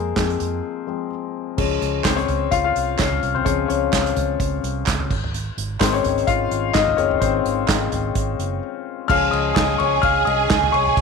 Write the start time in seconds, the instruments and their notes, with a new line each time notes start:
Already playing: fingered electric bass F2, grand piano G#3 A#3 C4 G#4 A#4 C5
0.16 fingered electric bass F2, grand piano F3 G#3 C4, kick, snare, clap, closed hi-hat
0.30 closed hi-hat
0.40 fingered electric bass F2, closed hi-hat
0.87 grand piano F3 G#3 C4
1.57 fingered electric bass C#2, grand piano F3 G#3 C#4, kick, crash
1.82 fingered electric bass C#2, closed hi-hat
2.04 fingered electric bass C#2, grand piano C4 C5, kick, snare, clap, closed hi-hat
2.17 grand piano C#4 C#5, closed hi-hat
2.28 fingered electric bass C#2, closed hi-hat, floor tom
2.51 fingered electric bass C#2, grand piano F4 F5, kick, closed hi-hat
2.64 grand piano F4 F5
2.76 fingered electric bass C2, closed hi-hat
2.98 fingered electric bass C#2, grand piano C#4 C#5, kick, snare, clap, closed hi-hat
3.12 floor tom
3.23 fingered electric bass C2, closed hi-hat
3.35 grand piano C4 C5, floor tom
3.45 fingered electric bass C#2, grand piano F3 G#3 C#4 C#5, kick, closed hi-hat
3.68 fingered electric bass C#2, grand piano C#4 C#5, closed hi-hat
3.93 fingered electric bass C#2, kick, snare, clap, closed hi-hat
4.06 closed hi-hat
4.16 fingered electric bass C#2, closed hi-hat, floor tom
4.40 fingered electric bass C#2, kick, closed hi-hat
4.63 fingered electric bass C2, closed hi-hat
4.86 fingered electric bass C#2, kick, snare, clap, closed hi-hat
4.88 clap
5.00 floor tom
5.11 fingered electric bass G#1, kick, crash
5.24 floor tom
5.34 closed hi-hat
5.57 fingered electric bass G#1, closed hi-hat
5.80 fingered electric bass G#1, grand piano D#3 G#3 C4 D#4 C5, kick, snare, clap, closed hi-hat
5.93 grand piano C#4 C#5, closed hi-hat
6.04 fingered electric bass G#1, closed hi-hat, floor tom
6.18 closed hi-hat
6.27 fingered electric bass G#1, grand piano F4 F5, kick, closed hi-hat
6.51 fingered electric bass G#1, closed hi-hat
6.74 fingered electric bass G#1, grand piano D#4 D#5, kick, snare, clap, closed hi-hat
6.88 floor tom
6.97 fingered electric bass F#1, grand piano D#3 G#3 C4 C#4 C#5, closed hi-hat
7.11 floor tom
7.20 fingered electric bass G#1, grand piano C4 C5, kick, closed hi-hat
7.45 fingered electric bass G#1, closed hi-hat
7.68 fingered electric bass G#1, grand piano D#3 G#3 C4, kick, snare, clap, closed hi-hat
7.92 fingered electric bass G#1, closed hi-hat, floor tom
8.15 fingered electric bass G#1, kick, closed hi-hat
8.39 fingered electric bass F#1, closed hi-hat
9.08 fingered electric bass C#2, grand piano F3 G#3 C#4 F5 F6, violin section G#4 G#5, kick, crash
9.31 fingered electric bass C#2, grand piano D#5 D#6, ride
9.55 fingered electric bass C#2, grand piano D#5 D#6, kick, snare, clap, ride
9.78 fingered electric bass C#2, grand piano C#5 C#6, floor tom, ride
10.02 fingered electric bass C#2, grand piano F5 F6, kick, ride
10.25 fingered electric bass C2, grand piano D#5 D#6, ride
10.50 fingered electric bass C#2, kick, snare, clap, ride
10.63 floor tom
10.72 fingered electric bass C2, grand piano C#5 C#6, ride
10.87 floor tom
10.97 fingered electric bass C#2, kick, ride